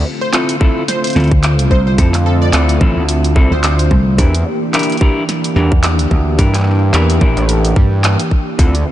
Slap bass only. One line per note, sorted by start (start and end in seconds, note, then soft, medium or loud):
1.16 1.69 D2 loud
1.71 1.97 C2 loud
2.81 2.94 A1 loud
2.97 3.34 D2 loud
3.51 3.89 D2 medium
3.91 4.17 C2 loud
5.56 6.09 E2 loud
6.11 6.37 D2 loud
7.21 7.34 A#1 loud